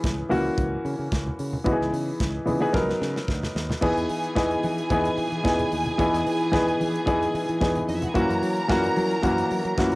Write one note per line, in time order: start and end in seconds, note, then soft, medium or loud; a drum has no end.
0.00 0.21 C#2 loud
0.00 0.29 E3 medium
0.00 0.32 B3 medium
0.00 0.30 C#4 medium
0.00 0.33 G#4 medium
0.00 kick loud
0.00 high conga medium
0.04 snare loud
0.04 closed hi-hat medium
0.29 0.48 C#2 medium
0.29 1.17 E3 medium
0.29 1.17 A#3 medium
0.29 1.17 C#4 medium
0.29 1.18 F#4 medium
0.29 open hi-hat medium
0.29 high conga medium
0.29 low conga medium
0.58 0.75 C#2 loud
0.58 kick loud
0.58 closed hi-hat medium
0.58 high conga medium
0.85 0.94 C#3 medium
0.85 open hi-hat medium
0.85 muted conga soft
0.99 1.07 C#3 medium
1.12 1.30 C#2 loud
1.12 kick loud
1.12 snare loud
1.12 closed hi-hat medium
1.27 low conga medium
1.39 1.57 C#3 medium
1.39 open hi-hat medium
1.39 muted conga soft
1.53 low conga medium
1.64 1.75 C#2 loud
1.64 2.16 E3 medium
1.64 2.16 B3 medium
1.64 2.16 D#4 medium
1.64 1.73 F#4 medium
1.64 kick loud
1.64 closed hi-hat medium
1.72 2.20 G#4 medium
1.80 1.89 C#2 loud
1.80 snare soft
1.93 2.10 C#3 medium
1.93 open hi-hat medium
2.20 2.38 C#2 loud
2.20 kick loud
2.20 snare loud
2.20 closed hi-hat medium
2.20 high conga medium
2.46 2.64 C#3 loud
2.46 2.55 E3 medium
2.46 2.56 B3 medium
2.46 2.56 D#4 medium
2.46 2.56 G#4 medium
2.46 open hi-hat medium
2.46 high conga medium
2.46 low conga medium
2.60 2.69 E3 medium
2.60 2.69 B3 medium
2.60 2.69 D#4 medium
2.60 2.69 G#4 loud
2.73 2.92 C#2 medium
2.73 3.41 F#3 medium
2.73 3.41 B3 medium
2.73 3.41 D#4 medium
2.73 3.42 A#4 medium
2.73 kick loud
2.73 snare medium
2.73 muted conga soft
2.73 high conga medium
2.89 snare medium
3.01 3.19 C#3 loud
3.01 snare medium
3.01 muted conga soft
3.16 snare medium
3.28 3.46 D2 medium
3.28 kick loud
3.28 snare medium
3.28 muted conga soft
3.43 snare medium
3.43 low conga medium
3.55 3.73 D#2 medium
3.55 snare loud
3.70 snare medium
3.70 low conga medium
3.81 3.92 E2 medium
3.81 4.16 E3 medium
3.81 4.16 B3 medium
3.81 4.16 D#4 medium
3.81 7.79 G#4 medium
3.81 4.16 G#4 loud
3.81 7.79 G#5 loud
3.81 kick loud
3.81 crash medium
3.81 muted conga soft
3.97 4.05 E2 medium
3.97 closed hi-hat soft
4.09 4.27 E3 medium
4.09 open hi-hat medium
4.09 muted conga soft
4.24 closed hi-hat soft
4.35 4.54 E2 medium
4.35 4.70 E3 medium
4.35 4.70 B3 medium
4.35 4.70 D#4 medium
4.35 4.71 G#4 medium
4.35 kick loud
4.35 snare loud
4.35 high conga medium
4.51 closed hi-hat soft
4.63 4.81 E3 loud
4.63 open hi-hat medium
4.63 high conga medium
4.78 closed hi-hat soft
4.90 5.08 E2 loud
4.90 5.24 E3 medium
4.90 5.25 B3 medium
4.90 5.25 D#4 medium
4.90 5.25 G#4 loud
4.90 kick loud
4.90 closed hi-hat medium
4.90 muted conga soft
4.90 high conga medium
5.05 closed hi-hat soft
5.18 5.27 E3 loud
5.18 open hi-hat medium
5.18 muted conga soft
5.32 5.40 E3 medium
5.32 closed hi-hat soft
5.44 5.62 E2 medium
5.44 5.78 E3 medium
5.44 5.78 B3 medium
5.44 5.79 D#4 medium
5.44 5.79 G#4 loud
5.44 kick loud
5.44 snare loud
5.59 closed hi-hat soft
5.59 low conga medium
5.72 5.89 D#2 medium
5.72 open hi-hat medium
5.72 muted conga soft
5.86 closed hi-hat soft
5.86 low conga medium
5.98 6.08 E2 loud
5.98 6.32 E3 loud
5.98 6.33 B3 medium
5.98 6.33 D#4 medium
5.98 6.33 G#4 medium
5.98 kick loud
5.98 closed hi-hat medium
5.98 muted conga soft
6.13 6.22 E2 loud
6.13 snare soft
6.13 closed hi-hat soft
6.26 6.55 E3 loud
6.26 open hi-hat medium
6.41 closed hi-hat soft
6.52 6.71 E2 loud
6.52 6.86 E3 medium
6.52 6.87 B3 medium
6.52 6.87 D#4 medium
6.52 6.87 G#4 loud
6.52 kick loud
6.52 snare loud
6.52 muted conga soft
6.52 high conga medium
6.68 closed hi-hat soft
6.81 6.98 E3 medium
6.81 open hi-hat medium
6.81 high conga medium
6.96 closed hi-hat medium
7.06 7.25 E2 medium
7.06 7.40 E3 medium
7.06 7.41 B3 medium
7.06 7.41 D#4 medium
7.06 7.41 G#4 loud
7.06 kick loud
7.06 closed hi-hat medium
7.06 high conga medium
7.23 closed hi-hat soft
7.34 7.44 E3 loud
7.34 open hi-hat medium
7.34 muted conga soft
7.49 7.57 E3 medium
7.49 closed hi-hat soft
7.61 7.79 E2 medium
7.61 7.95 E3 medium
7.61 7.95 B3 medium
7.61 7.95 D#4 medium
7.61 7.95 G#4 medium
7.61 kick loud
7.61 snare loud
7.76 closed hi-hat soft
7.76 low conga medium
7.88 8.06 F2 medium
7.88 7.96 D#4 medium
7.88 7.96 D#5 medium
7.88 open hi-hat medium
7.88 muted conga soft
7.95 8.03 E4 medium
7.95 8.03 E5 medium
8.02 8.09 F#4 medium
8.02 8.09 F#5 medium
8.02 closed hi-hat soft
8.02 low conga medium
8.09 8.15 G#4 medium
8.09 8.15 G#5 medium
8.14 8.25 F#2 loud
8.14 8.49 E3 medium
8.14 9.95 F#3 medium
8.14 8.49 A#3 medium
8.14 8.49 C#4 medium
8.14 9.95 E4 medium
8.14 8.49 F#4 loud
8.14 9.95 A#4 medium
8.14 9.95 A#5 loud
8.14 kick loud
8.14 closed hi-hat medium
8.30 8.38 F#2 loud
8.30 closed hi-hat soft
8.42 8.60 F#3 medium
8.42 open hi-hat medium
8.57 closed hi-hat soft
8.68 8.87 F#2 loud
8.68 9.03 E3 medium
8.68 9.03 A#3 medium
8.68 9.03 C#4 medium
8.68 9.04 F#4 loud
8.68 kick loud
8.68 snare loud
8.68 high conga medium
8.84 closed hi-hat soft
8.96 9.14 F#3 loud
8.96 open hi-hat medium
8.96 muted conga soft
8.96 high conga medium
9.11 closed hi-hat medium
9.23 9.41 F#2 medium
9.23 9.57 E3 medium
9.23 9.57 A#3 medium
9.23 9.57 C#4 medium
9.23 9.58 F#4 medium
9.23 kick loud
9.23 closed hi-hat medium
9.23 high conga medium
9.38 closed hi-hat soft
9.51 9.60 F#3 loud
9.51 open hi-hat medium
9.51 muted conga soft
9.65 9.73 F#3 medium
9.65 closed hi-hat soft
9.78 9.95 F#2 medium
9.78 9.95 E3 medium
9.78 9.95 A#3 medium
9.78 9.95 C#4 medium
9.78 9.95 F#4 medium
9.78 kick loud
9.78 snare loud
9.92 closed hi-hat soft